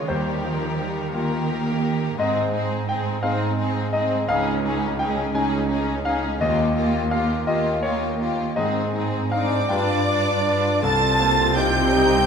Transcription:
Already playing: A#3 F4 A#4 C#5 D#5 F5
0.08 D#2 D#3 G3 G4 A#4 C5
0.44 F3
0.78 G3
1.13 A#3 F4 G4 A#4
2.18 G#2 C4 D#4 G#4 D#5
2.53 C4 D#4 G#4
2.87 C4 D#4 G#4 G5
3.22 G#2 C4 D#4 G#4 F5
3.57 C4 D#4 G#4
3.93 C4 D#4 G#4 D#5
4.28 C#2 C#4 D#4 G#4 F5
4.64 C#4 D#4 G#4
4.98 C#4 D#4 G#4 G5
5.33 C#2 C#4 D#4 G#4 G#5
5.69 C#4 D#4 G#4
6.04 C#4 D#4 G#4 F5
6.39 D#2 A#3 F4 G4 D#5
6.75 A#3 F4 G4
7.11 A#3 F4 G4 F5
7.46 D#2 A#3 F4 G4 D#5
7.83 A#3 F4 G4 C#5
8.19 A#3 F4 G4
8.56 G#2 D#3 C4 D#4 G#4 D#5
8.93 C4 D#4 G#4
9.31 C4 D4 D#4 G#4 D5 F5 D6
9.69 G2 D4 F4 B4 G5
10.07 D4 F4 B4
10.46 D4 F4 B4
10.81 C2 C4 F4 A4 A5 A6
11.20 A#3 C5
11.55 D#4 G4 C5 G5 G6
11.92 D#4 C5

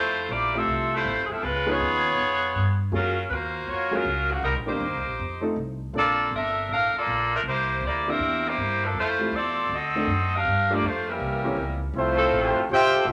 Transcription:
Already playing: F2 F3 A3 C4 E4 F4 G4 A4 C5
0.29 A#1 A#3 E4 G4 D5
0.54 F3 A3 C4 F4 G4 A4 E5
0.66 C2
0.94 A3 E4 F4 C5
1.05 A1
1.17 F1
1.25 G#4
1.30 E1 F3 C4 E4 A4
1.43 C#2 G#3 C#4 F4 B4
1.66 F3 B3 C#4 D#4 F4 G#4
1.71 C#5
1.80 D#2
2.18 F2
2.55 G2
2.92 F#2 F#3 A#3 C#4 F4 G#4 A#4
3.29 D#2 A#3 F4 B4 C5
3.33 F#4
3.67 F2 A#3 F4 F#4 C#5
3.91 F#3 A#3 C#4 F4 G#4 A#4
4.05 C#2
4.30 C#3 F3 A#3 F#4
4.43 C2 G3 C4 D#4 A#4
4.56 A#1
4.66 G1 D#3 A#3 C4 D4 D#4 G4 C5
4.80 D#2
4.94 C2
5.07 A#1
5.19 F2
5.41 F3 A3 C4 D#4 A4
5.56 C2
5.93 A#1 F3 A#3 C4 D4 A4
5.97 F4 D5
6.31 G1 A4 E5
6.35 D4 A#4
6.69 A1 D4 A4 A#4 F5
6.94 A#3 F4 A4 D5, muted upright bass stroke
7.06 A#1
7.35 F3 A3 D4 A#4
7.43 C2
7.47 A#3 E4 G4 C5
7.81 D2
7.85 A#3 E4 G4 D5
8.06 E3 A#3 C4 D4 G4 A#4 E5
8.19 E2
8.47 A#3 E4 G4 C5
8.57 G2
8.84 F3 A#3 D4 A4
8.95 F2 A3 E4 C5
8.99 F4
9.19 F3 A3 C4 E4 G4
9.32 E2 C4 F4 A4 D5
9.69 D2 C4 A4 D#5
9.74 F#4
9.95 D#3 A3 C4 D4 A4
10.07 F#2
10.35 D4 G4 A#4 F5
10.45 G2
10.70 F3 A3 A#3 D4 F4 G4 D5
10.82 F2
10.86 A3 D4 F4 C5
11.06 E3 G3 A#3 C#4 E4 A#4
11.20 C2
11.44 E3 A#3 C4 C#4 G4
11.56 C#2
11.94 C2 F3 A3 C4 E4 F4 C5
12.16 F3 C4 A4
12.31 A1
12.56 muted upright bass stroke
12.69 A#1 C4 F4 G4 C5 E5 G5
12.92 F3 C4 F4 A4, muted upright bass stroke
13.05 C2 A3 C4 F4

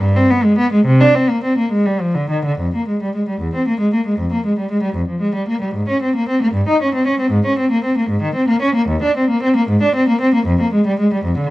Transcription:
0.01 G2
0.16 C4
0.30 B3
0.44 G#3
0.58 B3
0.73 G#3
0.85 C3
1.01 D4
1.15 C4
1.29 A#3
1.44 C4
1.58 A#3
1.72 G#3
1.86 G3
2.01 F3
2.15 D3
2.30 D#3
2.45 D3
2.59 F2
2.75 A#3
2.88 G#3
3.03 G3
3.16 G#3
3.29 G3
3.41 E2
3.55 C4
3.68 A#3
3.80 G#3
3.94 A#3
4.07 G#3
4.19 F2
4.32 A#3
4.46 G#3
4.58 G3
4.71 G#3
4.83 G3
4.95 F2
5.09 F3
5.21 G#3
5.35 G3
5.48 A#3
5.61 G3
5.75 G#2
5.89 C#4
6.02 C4
6.16 A#3
6.29 C4
6.42 A#3
6.54 G2
6.68 D#4
6.82 C#4
6.95 C4
7.07 C#4
7.20 C4
7.31 G#2
7.46 C#4
7.59 C4
7.71 A#3
7.84 C4
7.98 A#3
8.09 G#2
8.22 D#3
8.35 C4
8.48 A#3
8.62 C#4
8.75 A#3
8.88 D#2
9.03 D4
9.17 C4
9.30 A#3
9.43 C4
9.56 A#3
9.69 G#2
9.82 D4
9.95 C4
10.09 A#3
10.21 C4
10.34 A#3
10.46 F2
10.61 A#3
10.73 G#3
10.86 G3
11.00 G#3
11.13 G3
11.25 F2
11.38 D3

